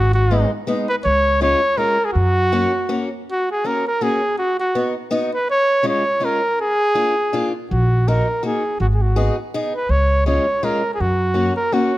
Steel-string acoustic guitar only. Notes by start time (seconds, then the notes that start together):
0.31 G#3 B3 D#4
0.67 G#3 B3 D#4
1.41 G#3 C#4 F4
1.77 G#3 C#4 F4
2.52 A#3 C#4 F#4
2.89 A#3 C#4 F#4
3.64 A#3 C#4 F#4
4.01 A#3 C#4 F#4
4.75 B3 D#4 F#4
5.11 B3 D#4 F#4
5.83 G#3 C#4 F4
6.20 G#3 C#4 F4
6.95 A#3 D4 F4
7.33 A#3 D4 F4
8.08 A#3 D#4 F#4
8.43 A#3 D#4 F#4
9.16 B3 D#4 G#4
9.54 B3 D#4 G#4
10.26 G#3 C#4 F4
10.63 G#3 C#4 F4
11.34 A#3 C#4 F#4
11.72 A#3 C#4 F#4